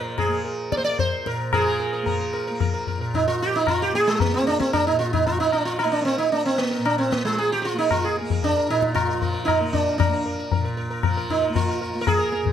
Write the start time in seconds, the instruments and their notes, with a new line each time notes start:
Already playing: tanpura A#2 F3 A#3, sitar A#4
0.18 sitar G#4, tabla na, tabla ge
0.28 tanpura A#3
0.44 sitar A#4
0.72 sitar D5, tabla ke
0.76 tanpura A#3, sitar C5
0.84 sitar D5
0.99 sitar C5, tabla tin, tabla ge
1.25 tanpura A#2, sitar A#4, tabla ke
1.53 tanpura F3, sitar G#4 A#4, tabla na, tabla ge
1.66 sitar A#4
1.80 sitar A#4
1.93 sitar A#4
2.02 tanpura A#3, sitar A#4
2.06 tabla tin, tabla ge
2.20 sitar A#4
2.33 sitar A#4, tabla na
2.47 tanpura A#3, sitar A#4
2.60 sitar A#4, tabla na, tabla ge
2.74 sitar A#4
2.87 sitar A#4, tabla ge
2.98 tanpura A#2, sitar A#4
3.14 sitar D#4, tabla tin, tabla ge
3.28 sitar F4
3.42 tanpura F3, sitar G4
3.56 sitar D#4
3.67 sitar F4, tabla na, tabla ge
3.82 sitar G4
3.93 tanpura A#3, sitar G#4
4.07 sitar G#3
4.20 sitar A#3, tabla tin, tabla ge
4.34 sitar C4
4.42 tanpura A#3
4.47 sitar D4, tabla na
4.59 sitar C4, tabla ke
4.73 sitar D4, tabla na, tabla ge
4.87 tanpura A#2, sitar D#4
4.99 sitar F4, tabla te
5.13 sitar D#4, tabla ge
5.26 sitar F4, tabla tin, tabla ge
5.36 tanpura F3, sitar D#4
5.52 sitar D4, tabla na
5.65 sitar F4
5.79 sitar D#4, tabla na
5.85 tanpura A#3
5.92 sitar D4
6.01 sitar C4 D4
6.18 sitar D#4
6.32 tanpura A#3, sitar D4, tabla tin
6.45 sitar C4
6.58 sitar A#3
6.71 sitar A#4
6.78 tanpura A#2
6.85 sitar D4, tabla na
6.98 sitar C4
7.12 sitar A#3, tabla ke
7.25 tanpura F3, sitar G#3
7.38 sitar G#4, tabla tin
7.52 sitar G4
7.62 sitar F4 G4
7.74 tanpura A#3
7.79 sitar D#4
7.91 sitar F4, tabla na, tabla ge
8.04 sitar G#4
8.17 sitar A#4, tabla te
8.21 tanpura A#3
8.30 sitar A#4, tabla ge
8.43 sitar D4, tabla tin, tabla ge
8.57 sitar A#4
8.68 tanpura A#2, sitar D#4, tabla na
8.82 sitar A#4, tabla ke
8.94 sitar F4, tabla na, tabla ge
9.08 sitar A#4
9.15 tanpura F3
9.22 sitar A#4, tabla ge
9.34 sitar A#4
9.45 sitar D#4, tabla na, tabla ge
9.61 tanpura A#3, sitar A#4
9.73 sitar D4, tabla ge
9.98 sitar D4, tabla na, tabla ge
10.08 tanpura A#3
10.13 sitar A#4
10.26 sitar A#4
10.39 sitar A#4
10.52 tanpura A#2, sitar A#4, tabla tin, tabla ge
10.65 sitar A#4
10.77 sitar A#4
10.90 sitar A#4
11.03 tanpura F3, sitar A#4, tabla na, tabla ge
11.17 sitar A#4
11.29 sitar D#4, tabla ge
11.42 sitar A#4
11.50 tanpura A#3
11.55 sitar F4, tabla tin, tabla ge
11.69 sitar A#4
11.81 sitar A#4
11.95 tanpura A#3
12.01 sitar A#4
12.07 sitar G#4, tabla na, tabla ge
12.19 sitar A#4
12.32 sitar A#4, tabla te
12.42 tanpura A#2
12.46 tabla ge